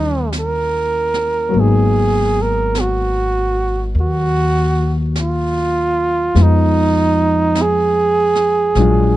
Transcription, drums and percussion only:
0.32 brush sweep, snare, hi-hat pedal
1.14 snare
1.53 brush sweep
2.75 brush sweep, snare, hi-hat pedal
3.95 brush sweep
5.16 brush sweep, snare, hi-hat pedal
6.35 brush sweep, snare
7.55 brush sweep, snare, hi-hat pedal
8.35 snare
8.75 brush sweep, snare

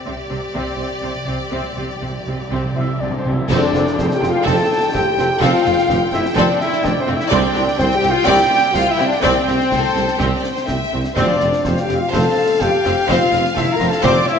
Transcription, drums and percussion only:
3.50 concert bass drum, snare, crash, tam-tam
3.75 snare
3.87 snare
3.99 concert bass drum, snare
4.11 snare
4.23 snare
4.47 concert bass drum, snare
4.95 concert bass drum, snare
5.19 snare
5.43 concert bass drum, snare
5.66 snare
5.78 snare
5.90 concert bass drum, snare
6.14 snare
6.26 snare
6.38 concert bass drum, snare
6.61 snare
6.73 snare
6.85 concert bass drum, snare
7.20 snare
7.32 concert bass drum, snare, crash
7.55 snare
7.68 snare
7.79 concert bass drum, snare
7.92 snare
8.03 snare
8.27 concert bass drum, snare
8.74 concert bass drum, snare
8.99 snare
9.23 concert bass drum, snare
9.48 snare
9.61 snare
9.72 concert bass drum, snare
9.97 snare
10.08 snare
10.20 concert bass drum, snare
10.44 snare
10.57 snare
10.68 concert bass drum, snare
11.04 snare
11.16 concert bass drum, snare, crash
11.40 snare
11.53 snare
11.65 concert bass drum, snare
11.77 snare
11.89 snare
12.13 concert bass drum, snare
12.61 concert bass drum, snare
12.86 snare
13.09 concert bass drum, snare
13.33 snare
13.45 snare
13.57 concert bass drum, snare
13.80 snare
13.92 snare
14.04 concert bass drum, snare
14.28 snare

